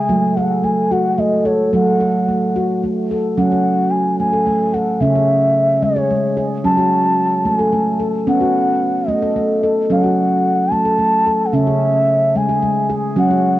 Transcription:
Already playing: handpan G#4, bansuri G#5
0.09 handpan F#3 A3
0.36 handpan A4, bansuri F#5
0.64 handpan A3, bansuri G#5
0.91 handpan F#4, bansuri F#5
1.18 handpan A3, bansuri D#5
1.45 handpan A4, bansuri C#5
1.73 handpan F#3 A3, bansuri F#5
2.00 handpan A4
2.29 handpan A3
2.56 handpan F#4
2.84 handpan A3
3.11 handpan A4
3.37 handpan F#3 C#4, bansuri F#5
3.52 handpan F#4
3.91 bansuri G#5
4.20 handpan A3, bansuri G#5
4.33 handpan A4
4.47 handpan A3
4.74 handpan A4, bansuri F#5
5.00 handpan C#3 C#4, bansuri E5
5.15 handpan G#4
5.82 handpan G#3, bansuri C#5
5.96 handpan G#4
6.10 handpan G#3
6.37 handpan G#4
6.64 handpan F#3 C#4, bansuri A5
6.77 handpan F#4
7.45 handpan A3, bansuri G#5
7.59 handpan A4
7.72 handpan A3
8.00 handpan A4
8.27 handpan B3 C#4, bansuri F#5
8.41 handpan F#4
9.08 handpan A3, bansuri D#5
9.22 handpan A4
9.36 handpan A3
9.63 handpan A4
9.90 handpan F#3 C#4, bansuri F#5
10.04 handpan F#4
10.72 handpan A3, bansuri A5
10.85 handpan A4
10.99 handpan A3
11.27 handpan A4
11.46 bansuri F#5
11.53 handpan C#3 C#4, bansuri E5
11.67 handpan G#4
12.35 handpan G#3, bansuri G#5
12.49 handpan G#4
12.62 handpan G#3
12.89 handpan G#4
13.16 handpan F#3 C#4, bansuri F#5
13.30 handpan F#4

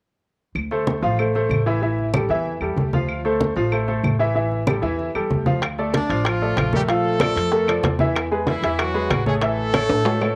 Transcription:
0.55 upright bass D2, high conga, claves
0.71 grand piano A3 A4 C5, high conga
0.87 high conga
1.02 upright bass A1, grand piano F3 F4 F5, high conga
1.19 grand piano A3 A4 C5, high conga, claves
1.35 grand piano A3 A4 C5, high conga
1.49 upright bass A1, high conga, claves
1.66 grand piano E3 E4 E5
1.82 grand piano E3 E4 E5, high conga
1.99 high conga
2.14 grand piano G3 G4 A4, high conga, claves
2.29 upright bass E2, grand piano E3 E4 E5
2.46 high conga
2.61 upright bass E2, grand piano G3 G4 A4, high conga, claves
2.76 upright bass D2, high conga
2.93 grand piano F3 F4 F5, high conga
3.09 high conga, claves
3.25 grand piano A3 A4 C5, high conga
3.41 high conga
3.56 upright bass A1, grand piano F3 F4 F5, high conga
3.72 grand piano A3 A4 C5, high conga, claves
3.88 grand piano A3 A4 C5, high conga
4.03 upright bass A1, high conga, claves
4.19 grand piano E3 E4 E5
4.35 grand piano E3 E4 E5, high conga
4.52 high conga
4.67 grand piano G3 G4 A4, high conga, claves
4.82 upright bass E2, grand piano E3 E4 E5
4.99 high conga
5.15 upright bass E2, grand piano G3 G4 A4, high conga, claves
5.30 upright bass D2, high conga
5.46 grand piano F3 F4 F5, high conga
5.62 high bongo, high conga, high timbale, claves
5.78 grand piano A3 A4 D5, high conga
5.94 horn section D4 D5, high bongo, high conga, high timbale
6.10 upright bass A1, grand piano F3 F4 F5, high conga, high timbale
6.25 horn section F3 F4, high bongo, high conga, high timbale, claves
6.41 grand piano A3 A4 D5, high conga
6.57 upright bass A#1, high bongo, low bongo, high conga, high timbale, claves
6.73 horn section G3 G4, grand piano A3 A4 A#4, high conga
6.88 grand piano F3 F4 F5, horn section A3 A4, high bongo, high conga, high timbale
7.04 high conga
7.20 grand piano F3 A4 D5, high bongo, high conga, high timbale, claves
7.36 upright bass F2, high bongo, high timbale
7.52 grand piano A3 A4 A#4, high bongo, high conga
7.68 grand piano F3 A4 D5, high bongo, high conga, high timbale, claves
7.83 upright bass E2, high bongo, low bongo, high conga, high timbale
7.99 grand piano E3 E4 E5, high bongo, high conga
8.15 high bongo, high conga, high timbale, claves
8.31 grand piano G#3 G#4 B4, high conga
8.47 horn section E3 E4, high bongo, high conga, high timbale
8.63 upright bass E2, grand piano E3 E4 E5, high conga, high timbale
8.79 horn section F#3 F#4, high bongo, high conga, high timbale, claves
8.94 grand piano G#3 G#4 B4, high conga
9.10 upright bass A1, high bongo, low bongo, high conga, high timbale, claves
9.26 horn section G#3 G#4, grand piano A3 A4 C#5, high conga
9.42 grand piano E3 E4 E5, horn section A3 A4, high bongo, high conga, high timbale
9.58 high conga
9.74 grand piano A3 A4 C#5, high bongo, high conga, high timbale, claves
9.89 upright bass A2, high bongo, high timbale
10.05 grand piano A3 A4 C#5, high bongo, high conga, low timbale
10.21 grand piano A3 A4 C#5, high bongo, high conga, low timbale, claves

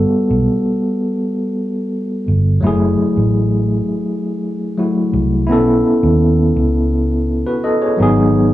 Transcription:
Already playing: tine electric piano G3 B3 F#4 A4
0.30 fingered electric bass B1
2.28 fingered electric bass G1
2.60 fingered electric bass F#1, tine electric piano F#3 A3 E4
2.67 tine electric piano G#4
3.17 fingered electric bass A1
4.77 tine electric piano F#3 A3 E4 F#4
5.13 fingered electric bass C2
5.47 fingered electric bass B1, tine electric piano B3 C#4 E4
5.52 tine electric piano A4
6.03 fingered electric bass D#2
6.56 fingered electric bass C#2
7.47 tine electric piano F#4 B4
7.64 tine electric piano A4 D#5
7.82 tine electric piano G#4 C#5
7.97 fingered electric bass G#1, tine electric piano F#3 B3 D#4
8.02 tine electric piano G#4

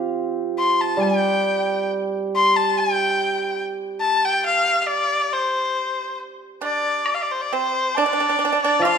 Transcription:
Already playing: hammered dulcimer F3 C4 F4 G4 C5
0.59 erhu C6
0.80 erhu A5
0.97 hammered dulcimer G3
1.02 erhu G5
2.36 erhu C6
2.56 erhu A5
2.78 erhu G5
4.01 erhu A5
4.25 erhu G5
4.46 erhu F5
4.81 erhu F5
4.87 erhu D5
5.33 erhu C5
6.61 pipa D4, erhu D5
7.06 high woodblock
7.14 erhu F5
7.22 erhu D5
7.32 erhu C5
7.41 erhu D5
7.53 pipa C4, erhu C5
7.95 pipa D4, erhu D5, low woodblock
8.06 pipa D4
8.13 pipa D4
8.20 pipa D4
8.29 pipa D4
8.39 pipa D4
8.45 pipa D4
8.53 pipa D4
8.62 pipa D4, erhu D5
8.80 hammered dulcimer F3, erhu F5, high woodblock
8.85 pipa F4

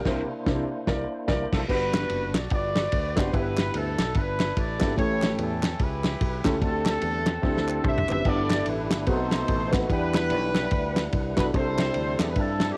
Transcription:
Already playing: tonewheel organ A#4 G5
0.05 fingered electric bass C2, grand piano C3 D4 E4 A#4 C5, tonewheel organ A#3 D4 E4 C5, kick, snare, crash
0.46 fingered electric bass C2, grand piano C3 D4 E4 A#4 C5, kick, snare
0.87 fingered electric bass C2, grand piano A#4 D5, kick, snare
1.28 fingered electric bass C2, grand piano A#4 D5, kick, snare
1.53 fingered electric bass C2, horn section A4, kick, snare, crash
1.68 fingered electric bass G1, grand piano G2 G3 B3 D4 F#4 B4, horn section D4 F#4 B4, kick, crash
1.94 snare, clap, ride
2.10 fingered electric bass F#1, ride
2.34 fingered electric bass B1, horn section D5, snare, clap, ride
2.50 fingered electric bass G1, horn section F#4 B4 D5, kick, ride
2.75 snare, clap, ride
2.92 fingered electric bass D2, kick, ride
3.16 fingered electric bass F#1, grand piano B3 D4 F#4 G4 D5, horn section C5, kick, snare, clap, ride
3.32 fingered electric bass G1, grand piano G2 B3 D4 E4 G4 B4, horn section D4 E4 B4, kick, ride
3.57 snare, clap, ride
3.74 fingered electric bass D2, horn section D4 E4 A4, ride
3.99 fingered electric bass B1, snare, clap, ride
4.15 fingered electric bass G1, horn section D4 E4 B4, kick, ride
4.40 snare, clap, ride
4.57 fingered electric bass A1, horn section B4 D5, kick, ride
4.79 fingered electric bass G#1, grand piano B3 D4 E4 G4 A4, kick, snare, clap, ride
4.96 fingered electric bass A1, grand piano A2 A3 C#4 E4 G4 A4, horn section E4 G4 C#5, kick, ride
5.22 snare, clap, ride
5.38 fingered electric bass E2, horn section C#4 E4 A4, ride
5.63 snare, clap, ride
5.79 fingered electric bass C#2, horn section E4 G4 B4, kick, ride
6.04 snare, clap, ride
6.21 fingered electric bass B1, kick, ride
6.44 fingered electric bass C#2, grand piano A3 C#4 E4 G4 A4, kick, snare, clap, ride
6.60 fingered electric bass D2, grand piano D3 A3 C4 D4 F#4 A4, horn section C4 A4, kick, ride
6.67 grand piano G4
6.86 horn section C4 A4, snare, clap, ride
7.02 fingered electric bass E2, ride
7.26 snare, clap, ride
7.42 fingered electric bass D2, grand piano D3 C4 D4 E4 G4 A4, kick, snare
7.57 snare
7.68 clap
7.84 fingered electric bass C2, horn section G4 C5 E5, kick, mid tom
7.98 floor tom
8.08 fingered electric bass F#1, grand piano C4 D4 E4 G4 B4, clap, floor tom
8.25 fingered electric bass G1, grand piano G2 B3 D4 E4 G4 A4, tonewheel organ A3 D4 E4 G4 B4, horn section A4 B4 D5, kick, crash
8.50 snare, clap, ride
8.66 fingered electric bass A1, horn section D4 E4 B4, ride
8.91 fingered electric bass G1, snare, clap, ride
9.07 fingered electric bass B1, grand piano B2 B3 C4 D#4 F#4 G#4, tonewheel organ A3 D#4 F#4 A4 C5, horn section D#4 A4 C5, kick, ride
9.12 tonewheel organ A4, grand piano A4
9.31 snare, clap, ride
9.48 fingered electric bass A1, kick, ride
9.72 grand piano B3 C4 D#4 F#4 B4, kick, snare, clap, ride
9.88 fingered electric bass E2, grand piano E3 B3 D4 E4 G4 F#5, tonewheel organ G3 D4 E4 B4 F#5, horn section D4 G4 B4, kick, ride
10.14 horn section D4 G4 B4, snare, clap, ride
10.30 fingered electric bass B1, ride
10.55 snare, clap, ride
10.71 fingered electric bass D2, kick, ride
10.96 snare, clap, ride
11.13 fingered electric bass C2, kick, ride
11.36 fingered electric bass B1, grand piano B3 D4 E4 F#4 A4, horn section B4, kick, snare, clap, ride
11.53 fingered electric bass C2, grand piano C3 C4 D4 E4 G4 A4, tonewheel organ G3 C4 D4 E4 G4, horn section E4 A4 C5, kick, ride
11.58 tonewheel organ A4
11.78 snare, clap, ride
11.94 fingered electric bass D2, ride
12.19 fingered electric bass E2, horn section D5, snare, clap, ride
12.29 horn section B4
12.36 fingered electric bass G2, horn section D4 E4 A4, kick, ride
12.60 snare, clap, ride
12.70 horn section D4 E4 G4

